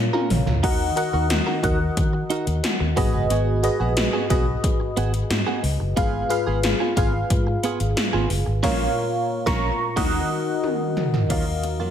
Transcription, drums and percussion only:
0.14 high tom
0.30 mid tom, open hi-hat
0.47 floor tom
0.64 kick, crash
0.97 closed hi-hat
1.30 snare, closed hi-hat
1.64 kick, closed hi-hat
1.97 kick, closed hi-hat
2.30 closed hi-hat
2.47 closed hi-hat
2.64 snare, closed hi-hat
2.97 kick, open hi-hat
3.30 closed hi-hat
3.64 closed hi-hat
3.97 snare, closed hi-hat
4.30 kick, closed hi-hat
4.64 kick, closed hi-hat
4.97 closed hi-hat
5.14 closed hi-hat
5.31 snare, closed hi-hat
5.64 open hi-hat
5.97 kick, closed hi-hat
6.30 closed hi-hat
6.63 snare, closed hi-hat
6.97 kick, closed hi-hat
7.30 kick, closed hi-hat
7.63 closed hi-hat
7.80 closed hi-hat
7.97 snare, closed hi-hat
8.30 open hi-hat
8.64 kick, snare, crash
9.47 kick, snare
9.97 kick, snare, crash
10.64 high tom
10.97 mid tom
11.14 floor tom
11.30 kick, closed hi-hat, crash
11.63 closed hi-hat

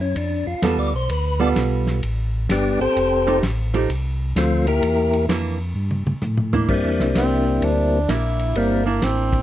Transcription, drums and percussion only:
0.16 ride
0.62 snare, hi-hat pedal, ride
1.09 ride
1.56 snare, hi-hat pedal, ride
1.87 snare
2.03 ride
2.49 snare, hi-hat pedal, ride
2.97 ride
3.43 snare, hi-hat pedal, ride
3.74 ride
3.90 ride
4.36 snare, hi-hat pedal, ride
4.67 ride
4.83 ride
5.13 ride
5.29 snare, hi-hat pedal, ride
5.91 high tom
6.07 high tom
6.22 hi-hat pedal, mid tom
6.37 mid tom
6.53 floor tom
6.69 kick, crash
6.99 snare
7.15 snare, hi-hat pedal, ride
7.62 ride
8.09 snare, hi-hat pedal, ride
8.39 ride
8.55 ride
9.02 snare, hi-hat pedal, ride
9.33 kick, ride

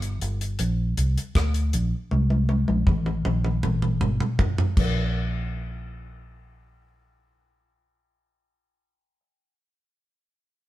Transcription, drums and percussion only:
0.02 closed hi-hat
0.21 closed hi-hat
0.41 closed hi-hat
0.59 closed hi-hat
0.97 closed hi-hat
1.18 closed hi-hat
1.35 kick, cross-stick, closed hi-hat
1.54 closed hi-hat
1.73 closed hi-hat
2.11 high tom
2.30 high tom
2.49 high tom
2.68 high tom
2.87 kick, mid tom
3.06 mid tom
3.25 mid tom
3.45 mid tom
3.63 mid tom
3.82 mid tom
4.01 mid tom
4.20 mid tom
4.39 kick, floor tom
4.58 floor tom
4.77 kick, crash

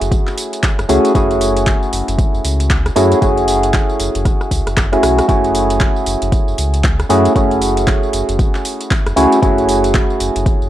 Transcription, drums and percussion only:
0.01 closed hi-hat, tambourine
0.12 kick, closed hi-hat, tambourine
0.27 clap, tambourine
0.38 open hi-hat, tambourine
0.53 closed hi-hat, tambourine
0.63 kick, clap, closed hi-hat, tambourine
0.79 cross-stick, closed hi-hat, tambourine
0.89 open hi-hat, tambourine
1.05 closed hi-hat, tambourine
1.15 kick, closed hi-hat, tambourine
1.31 closed hi-hat, tambourine
1.41 open hi-hat, tambourine
1.57 closed hi-hat, tambourine
1.67 kick, clap, closed hi-hat, tambourine
1.83 tambourine
1.93 open hi-hat, tambourine
2.08 closed hi-hat, tambourine
2.19 kick, closed hi-hat, tambourine
2.34 tambourine
2.45 open hi-hat, tambourine
2.60 closed hi-hat, tambourine
2.70 kick, clap, closed hi-hat, tambourine
2.86 cross-stick, closed hi-hat, tambourine
2.96 open hi-hat, tambourine
3.12 closed hi-hat, tambourine
3.22 kick, closed hi-hat, tambourine
3.37 closed hi-hat, tambourine
3.48 open hi-hat, tambourine
3.63 closed hi-hat, tambourine
3.74 kick, clap, closed hi-hat, tambourine
3.89 tambourine
4.00 open hi-hat, tambourine
4.15 closed hi-hat, tambourine
4.25 kick, cross-stick, closed hi-hat, tambourine
4.41 cross-stick, tambourine
4.51 kick, open hi-hat, tambourine
4.67 cross-stick, closed hi-hat, tambourine
4.77 kick, cross-stick, clap, closed hi-hat, tambourine
4.93 cross-stick, closed hi-hat, tambourine
5.03 cross-stick, open hi-hat, tambourine
5.19 cross-stick, closed hi-hat, tambourine
5.29 kick, closed hi-hat, tambourine
5.44 closed hi-hat, tambourine
5.55 open hi-hat, tambourine
5.70 closed hi-hat, tambourine
5.80 kick, clap, closed hi-hat, tambourine
5.96 tambourine
6.06 open hi-hat, tambourine
6.22 closed hi-hat, tambourine
6.32 kick, closed hi-hat, tambourine
6.48 tambourine
6.58 open hi-hat, tambourine
6.74 closed hi-hat, tambourine
6.84 kick, clap, closed hi-hat, tambourine
7.00 cross-stick, closed hi-hat, tambourine
7.10 open hi-hat, tambourine
7.25 closed hi-hat, tambourine
7.36 kick, closed hi-hat, tambourine
7.51 closed hi-hat, tambourine
7.62 open hi-hat, tambourine
7.77 closed hi-hat, tambourine
7.87 kick, clap, closed hi-hat, tambourine
8.03 tambourine
8.13 open hi-hat, tambourine
8.29 closed hi-hat, tambourine
8.39 kick, closed hi-hat, tambourine
8.55 clap, tambourine
8.65 open hi-hat, tambourine
8.81 closed hi-hat, tambourine
8.91 kick, clap, closed hi-hat, tambourine
9.06 cross-stick, closed hi-hat, tambourine
9.17 open hi-hat, tambourine
9.32 closed hi-hat, tambourine
9.43 kick, closed hi-hat, tambourine
9.58 closed hi-hat, tambourine
9.69 open hi-hat, tambourine
9.84 closed hi-hat, tambourine
9.94 kick, clap, closed hi-hat, tambourine
10.10 tambourine
10.20 open hi-hat, tambourine
10.36 closed hi-hat, tambourine
10.46 kick, closed hi-hat, tambourine
10.62 tambourine

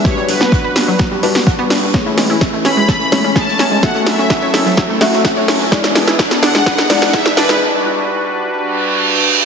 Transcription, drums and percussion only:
0.05 kick, snare, closed hi-hat
0.17 closed hi-hat
0.29 snare, closed hi-hat, open hi-hat
0.41 snare, closed hi-hat
0.52 kick, snare, closed hi-hat
0.76 snare, closed hi-hat, open hi-hat
0.87 snare
0.99 kick, snare, closed hi-hat
1.23 closed hi-hat, open hi-hat
1.35 snare, open hi-hat
1.46 kick, snare, closed hi-hat
1.70 snare, open hi-hat
1.94 kick, snare
2.18 snare, closed hi-hat, open hi-hat
2.41 kick, snare, closed hi-hat
2.65 snare, closed hi-hat, open hi-hat
2.88 kick, snare, closed hi-hat
3.01 closed hi-hat
3.12 snare, closed hi-hat, open hi-hat
3.36 kick, snare, closed hi-hat
3.48 snare
3.59 snare, closed hi-hat, open hi-hat
3.83 kick, snare, closed hi-hat
3.95 closed hi-hat
4.07 snare, closed hi-hat, open hi-hat
4.19 closed hi-hat
4.30 kick, snare, closed hi-hat
4.54 snare, closed hi-hat, open hi-hat
4.66 snare
4.77 kick, snare, closed hi-hat
5.01 snare, closed hi-hat, open hi-hat
5.13 snare
5.25 kick, snare, closed hi-hat
5.48 snare, open hi-hat
5.72 kick, snare, closed hi-hat
5.84 snare
5.95 snare, closed hi-hat, open hi-hat
6.08 snare
6.19 kick, snare, closed hi-hat
6.31 snare
6.43 snare, closed hi-hat, open hi-hat
6.55 snare
6.66 kick, snare, closed hi-hat
6.78 snare, closed hi-hat
6.90 snare, closed hi-hat, open hi-hat
6.96 snare, closed hi-hat
7.02 snare, closed hi-hat
7.07 snare, closed hi-hat
7.13 kick, snare
7.26 snare
7.37 snare, closed hi-hat, open hi-hat
7.49 snare

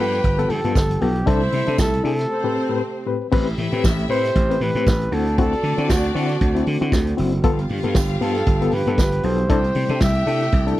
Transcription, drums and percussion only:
0.12 snare, closed hi-hat
0.24 kick, closed hi-hat
0.39 closed hi-hat
0.50 open hi-hat
0.65 closed hi-hat
0.75 kick, snare, tambourine
0.91 closed hi-hat
1.01 open hi-hat
1.16 closed hi-hat
1.27 kick, closed hi-hat
1.41 closed hi-hat
1.52 open hi-hat
1.67 closed hi-hat
1.78 kick, snare, tambourine
1.94 closed hi-hat
2.05 open hi-hat
2.18 snare, closed hi-hat
3.32 kick, crash
3.47 closed hi-hat
3.58 open hi-hat
3.72 closed hi-hat
3.84 kick, snare, tambourine
3.99 closed hi-hat
4.11 open hi-hat
4.25 snare, closed hi-hat
4.36 kick, closed hi-hat
4.51 closed hi-hat
4.61 open hi-hat
4.77 closed hi-hat
4.87 kick, snare, tambourine
5.02 closed hi-hat
5.12 open hi-hat
5.27 closed hi-hat
5.38 kick, closed hi-hat
5.53 closed hi-hat
5.64 open hi-hat
5.78 closed hi-hat
5.90 kick, snare, tambourine
6.04 closed hi-hat
6.16 open hi-hat
6.29 snare, closed hi-hat
6.41 kick, closed hi-hat
6.56 closed hi-hat
6.67 open hi-hat
6.82 closed hi-hat
6.92 kick, snare, tambourine
7.07 closed hi-hat
7.18 open hi-hat
7.32 closed hi-hat
7.44 kick, closed hi-hat
7.59 closed hi-hat
7.69 open hi-hat
7.83 closed hi-hat
7.94 kick, snare, tambourine
8.09 closed hi-hat
8.22 open hi-hat
8.35 snare, closed hi-hat
8.46 kick, closed hi-hat
8.62 closed hi-hat
8.72 open hi-hat
8.87 closed hi-hat
8.98 kick, snare, tambourine
9.12 closed hi-hat
9.23 open hi-hat
9.38 closed hi-hat
9.49 kick, closed hi-hat
9.64 closed hi-hat
9.75 open hi-hat
9.89 closed hi-hat
10.00 kick, snare, tambourine
10.15 closed hi-hat
10.28 open hi-hat
10.40 snare, closed hi-hat
10.52 kick, closed hi-hat
10.68 closed hi-hat

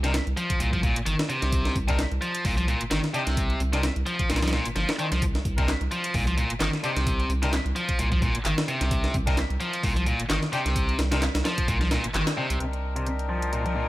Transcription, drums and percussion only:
0.04 snare, closed hi-hat
0.14 snare, closed hi-hat
0.27 closed hi-hat
0.37 closed hi-hat
0.50 kick, closed hi-hat
0.60 closed hi-hat
0.73 kick, closed hi-hat
0.83 kick, closed hi-hat
0.96 closed hi-hat
1.06 closed hi-hat
1.19 snare, closed hi-hat
1.30 closed hi-hat
1.42 snare, closed hi-hat
1.52 kick, closed hi-hat
1.65 snare, closed hi-hat
1.76 kick, closed hi-hat
1.88 kick, closed hi-hat
1.99 snare, closed hi-hat
2.12 closed hi-hat
2.22 closed hi-hat
2.35 closed hi-hat
2.45 kick, closed hi-hat, open hi-hat
2.58 closed hi-hat
2.68 closed hi-hat
2.81 closed hi-hat
2.91 snare, closed hi-hat
3.04 snare, closed hi-hat
3.14 closed hi-hat
3.27 snare, closed hi-hat
3.37 kick, closed hi-hat
3.50 closed hi-hat
3.60 closed hi-hat
3.73 snare, closed hi-hat
3.83 snare, closed hi-hat
3.96 closed hi-hat
4.07 closed hi-hat
4.19 kick, closed hi-hat
4.30 snare, closed hi-hat
4.36 snare, closed hi-hat
4.42 snare, closed hi-hat
4.48 snare, closed hi-hat
4.53 snare
4.66 closed hi-hat
4.76 snare, closed hi-hat
4.89 snare, closed hi-hat
4.99 closed hi-hat
5.12 snare, closed hi-hat
5.22 kick, closed hi-hat
5.35 snare, closed hi-hat
5.45 kick, closed hi-hat
5.58 kick, closed hi-hat
5.68 snare, clap, closed hi-hat
5.81 closed hi-hat
5.92 closed hi-hat
6.04 closed hi-hat
6.14 kick, closed hi-hat, open hi-hat
6.27 closed hi-hat
6.38 closed hi-hat
6.50 closed hi-hat
6.60 snare, clap, closed hi-hat
6.73 snare, closed hi-hat
6.84 closed hi-hat
6.97 snare, closed hi-hat
7.07 kick, closed hi-hat
7.20 closed hi-hat
7.30 closed hi-hat
7.43 snare, closed hi-hat
7.53 snare, clap, closed hi-hat
7.66 closed hi-hat
7.76 closed hi-hat
7.89 kick, closed hi-hat
7.99 closed hi-hat
8.12 kick, closed hi-hat
8.22 kick, closed hi-hat
8.35 closed hi-hat
8.45 clap, closed hi-hat
8.58 snare, closed hi-hat
8.68 closed hi-hat
8.81 snare, closed hi-hat
8.91 kick, closed hi-hat
9.04 snare, closed hi-hat
9.14 kick, closed hi-hat
9.27 kick, closed hi-hat
9.37 snare, clap, closed hi-hat
9.50 closed hi-hat
9.60 closed hi-hat
9.73 closed hi-hat
9.83 kick, closed hi-hat, open hi-hat
9.96 closed hi-hat
10.06 closed hi-hat
10.20 closed hi-hat
10.30 snare, clap, closed hi-hat
10.43 snare, closed hi-hat
10.53 closed hi-hat
10.66 snare, closed hi-hat
10.76 kick, closed hi-hat
10.89 closed hi-hat
10.99 snare, closed hi-hat
11.12 snare, closed hi-hat
11.22 snare, clap, closed hi-hat
11.35 snare, closed hi-hat
11.45 snare, closed hi-hat
11.58 kick, closed hi-hat
11.68 kick, closed hi-hat
11.81 snare, closed hi-hat
11.91 snare, closed hi-hat
12.04 closed hi-hat
12.14 clap, closed hi-hat
12.27 snare, closed hi-hat
12.50 closed hi-hat
12.60 closed hi-hat
12.73 closed hi-hat
12.96 closed hi-hat
13.06 closed hi-hat
13.19 closed hi-hat
13.42 closed hi-hat
13.53 closed hi-hat
13.66 closed hi-hat

